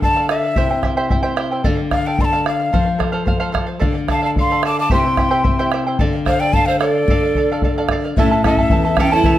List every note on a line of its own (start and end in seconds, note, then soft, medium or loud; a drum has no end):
0.00 0.54 D3 medium
0.00 0.16 A4 soft
0.00 0.15 D5 medium
0.00 0.15 F5 medium
0.00 0.28 A5 loud
0.00 bombo low medium
0.16 0.29 A4 medium
0.16 0.29 D5 medium
0.16 0.29 F5 medium
0.29 0.43 A4 medium
0.29 0.43 D5 medium
0.29 0.80 E5 medium
0.29 0.42 F5 medium
0.29 bombo rim medium
0.43 0.57 D5 soft
0.43 0.56 F5 soft
0.56 1.63 C3 medium
0.56 0.71 E4 medium
0.56 0.70 G4 medium
0.56 0.70 C5 medium
0.56 0.70 E5 medium
0.56 0.69 G5 medium
0.56 bombo low medium
0.71 0.82 E4 soft
0.71 0.83 C5 soft
0.71 0.84 G5 soft
0.83 0.96 E4 medium
0.83 0.96 C5 medium
0.83 0.96 E5 medium
0.83 0.96 G5 medium
0.83 bombo rim soft
0.83 bombo low soft
0.97 1.10 E4 medium
0.97 1.11 G4 medium
0.97 1.10 C5 medium
0.97 1.09 E5 medium
0.97 1.10 G5 medium
1.10 1.22 E4 medium
1.10 1.22 C5 medium
1.10 1.23 E5 medium
1.10 1.21 G5 medium
1.10 bombo low medium
1.23 1.35 E4 medium
1.23 1.38 G4 medium
1.23 1.36 C5 medium
1.23 1.35 E5 medium
1.23 1.36 G5 medium
1.36 1.51 E4 medium
1.36 1.51 C5 medium
1.36 1.51 E5 medium
1.36 1.50 G5 medium
1.36 bombo rim medium
1.51 1.64 E4 soft
1.51 1.64 C5 soft
1.51 1.65 G5 medium
1.64 2.71 D3 medium
1.64 1.78 A4 medium
1.64 1.77 D5 medium
1.64 1.76 F5 medium
1.64 bombo low medium
1.77 1.92 D5 soft
1.77 1.91 F5 soft
1.91 2.06 A4 medium
1.91 2.06 D5 medium
1.91 2.08 F5 medium
1.91 2.05 F5 medium
1.91 bombo rim soft
1.91 bombo low soft
2.06 2.19 A4 medium
2.06 2.19 D5 medium
2.06 2.20 F5 medium
2.06 2.23 G5 medium
2.19 2.32 A4 medium
2.19 2.32 D5 medium
2.19 2.32 F5 medium
2.19 2.26 C6 medium
2.19 bombo low medium
2.25 2.48 A5 medium
2.33 2.45 A4 soft
2.33 2.46 D5 medium
2.33 2.46 F5 medium
2.46 2.60 A4 medium
2.46 2.60 D5 medium
2.46 2.58 F5 medium
2.46 2.98 F5 medium
2.46 bombo rim medium
2.60 2.72 D5 soft
2.60 2.73 F5 medium
2.73 3.79 F3 medium
2.73 2.87 A4 medium
2.73 2.86 C5 medium
2.73 2.85 F5 medium
2.73 bombo low medium
2.86 2.98 C5 soft
2.86 2.99 F5 soft
2.98 3.13 A4 medium
2.98 3.12 C5 medium
2.98 3.11 F5 medium
2.98 bombo rim soft
2.98 bombo low soft
3.12 3.24 A4 medium
3.12 3.26 C5 medium
3.12 3.27 F5 medium
3.26 3.40 A4 soft
3.26 3.39 C5 medium
3.26 3.39 F5 medium
3.26 bombo low medium
3.40 3.51 A4 medium
3.40 3.53 C5 medium
3.40 3.53 F5 medium
3.52 3.68 A4 medium
3.52 3.66 C5 medium
3.52 3.65 F5 medium
3.52 bombo rim soft
3.52 bombo low soft
3.67 3.82 C5 soft
3.67 3.80 F5 medium
3.79 4.88 D3 medium
3.79 3.95 A4 medium
3.79 3.94 D5 medium
3.79 3.93 F5 medium
3.79 bombo low medium
3.94 4.08 D5 soft
3.94 4.08 F5 soft
4.08 4.22 A4 medium
4.08 4.21 D5 soft
4.08 4.21 F5 medium
4.08 4.23 F5 medium
4.08 4.23 A5 medium
4.08 bombo rim soft
4.08 bombo low soft
4.22 4.36 A4 soft
4.22 4.37 D5 medium
4.22 4.36 F5 medium
4.22 4.29 F5 medium
4.22 4.31 A5 medium
4.36 4.51 A4 soft
4.36 4.50 D5 medium
4.36 4.49 F5 medium
4.36 4.64 F5 medium
4.36 4.64 C6 medium
4.36 bombo low medium
4.50 4.63 A4 medium
4.50 4.64 D5 medium
4.50 4.64 F5 medium
4.63 4.78 A4 medium
4.63 4.78 D5 medium
4.63 4.78 F5 medium
4.63 4.77 A5 medium
4.63 4.78 D6 medium
4.63 bombo rim medium
4.79 4.91 D5 soft
4.79 4.90 F5 medium
4.79 4.91 A5 medium
4.79 4.92 D6 medium
4.90 5.97 C3 medium
4.90 5.05 E4 medium
4.90 5.05 G4 medium
4.90 5.05 C5 medium
4.90 5.05 E5 medium
4.90 5.03 G5 medium
4.90 5.70 C6 medium
4.90 bombo low medium
4.96 5.71 G5 medium
5.05 5.17 E4 soft
5.05 5.17 C5 soft
5.05 5.18 G5 soft
5.17 5.30 E4 medium
5.17 5.30 C5 soft
5.17 5.30 E5 medium
5.17 5.30 G5 medium
5.17 bombo rim soft
5.17 bombo low medium
5.31 5.43 E4 medium
5.31 5.45 G4 medium
5.31 5.43 C5 medium
5.31 5.43 E5 medium
5.31 5.44 G5 medium
5.44 5.59 E4 medium
5.44 5.58 C5 medium
5.44 5.58 E5 medium
5.44 5.58 G5 medium
5.44 bombo low medium
5.59 5.72 E4 medium
5.59 5.73 G4 medium
5.59 5.72 C5 medium
5.59 5.71 E5 medium
5.59 5.73 G5 medium
5.72 5.87 E4 medium
5.72 5.86 C5 medium
5.72 5.86 E5 medium
5.72 5.85 G5 medium
5.72 bombo rim medium
5.87 5.99 E4 soft
5.87 6.00 C5 medium
5.87 6.00 G5 medium
5.99 7.05 D3 medium
5.99 6.13 A4 medium
5.99 6.14 D5 medium
5.99 6.12 F5 medium
5.99 bombo low medium
6.13 6.26 D5 soft
6.13 6.26 F5 soft
6.26 6.40 A4 medium
6.26 6.42 C5 medium
6.26 6.40 D5 medium
6.26 6.39 F5 medium
6.26 6.41 F5 medium
6.26 bombo rim soft
6.26 bombo low medium
6.40 6.52 A4 medium
6.40 6.56 D5 medium
6.40 6.53 D5 medium
6.40 6.54 F5 medium
6.40 6.55 G5 medium
6.53 6.67 A4 medium
6.53 6.67 D5 medium
6.53 6.69 F5 medium
6.53 6.67 F5 medium
6.53 6.67 A5 loud
6.53 bombo low medium
6.66 6.80 A4 medium
6.66 6.79 C5 medium
6.66 6.81 D5 medium
6.66 6.79 F5 medium
6.66 6.81 F5 medium
6.79 7.84 A4 medium
6.79 6.95 A4 medium
6.79 7.85 D5 medium
6.79 6.95 D5 medium
6.79 6.94 F5 medium
6.79 bombo rim medium
6.95 7.10 D5 soft
6.95 7.09 F5 soft
7.08 8.13 D3 medium
7.08 7.23 A4 medium
7.08 7.23 D5 medium
7.08 7.22 F5 medium
7.08 bombo low medium
7.23 7.36 D5 soft
7.23 7.36 F5 medium
7.35 7.49 A4 soft
7.35 7.50 D5 medium
7.35 7.50 F5 medium
7.35 bombo low soft
7.52 7.63 A4 medium
7.52 7.64 D5 medium
7.52 7.64 F5 medium
7.62 7.77 A4 medium
7.62 7.77 D5 medium
7.62 7.77 F5 medium
7.62 bombo low medium
7.78 7.90 A4 medium
7.78 7.90 D5 medium
7.78 7.90 F5 medium
7.89 8.04 A4 medium
7.89 8.04 D5 medium
7.89 bombo rim medium
7.89 bombo low soft
7.93 8.03 F5 medium
8.04 8.18 D5 soft
8.04 8.17 F5 medium
8.17 8.69 A2 medium
8.17 8.43 C#4 medium
8.17 8.31 E4 medium
8.17 8.31 A4 medium
8.17 8.31 C#5 medium
8.17 8.42 E5 medium
8.17 8.31 E5 medium
8.17 8.30 A5 medium
8.17 bombo low medium
8.31 8.43 E4 soft
8.31 8.44 A4 soft
8.31 8.44 A5 soft
8.44 8.87 C#4 soft
8.44 9.01 C#4 medium
8.44 8.58 E4 medium
8.44 8.88 E4 soft
8.44 8.88 A4 medium
8.44 8.58 A4 medium
8.44 8.57 E5 medium
8.44 9.02 E5 medium
8.44 8.57 A5 medium
8.44 bombo rim soft
8.44 bombo low soft
8.57 8.71 E4 soft
8.57 8.72 A4 soft
8.57 8.71 A5 medium
8.57 bombo low medium
8.70 9.22 E2 medium
8.70 8.85 E4 medium
8.70 8.85 A4 medium
8.70 8.85 E5 soft
8.70 8.84 A5 medium
8.70 bombo low medium
8.85 8.99 E4 soft
8.85 8.99 A4 soft
8.85 8.98 A5 medium
8.97 9.39 C#4 soft
8.97 9.16 C#4 medium
8.97 9.39 E4 soft
8.97 9.11 E4 medium
8.97 9.39 A4 medium
8.97 9.11 A4 medium
8.97 9.12 C#5 medium
8.97 9.12 E5 medium
8.97 9.15 G5 medium
8.97 bombo rim medium
8.97 bombo low medium
9.01 9.11 A5 medium
9.12 9.25 E4 medium
9.12 9.39 E4 medium
9.12 9.24 A4 medium
9.12 9.24 C#5 medium
9.12 9.24 E5 medium
9.12 9.25 A5 medium
9.12 9.39 A5 medium
9.24 9.39 E2 medium
9.24 9.38 E4 medium
9.24 9.38 A4 medium
9.24 9.38 C#5 medium
9.24 9.39 E5 medium
9.24 9.37 A5 medium
9.24 bombo low medium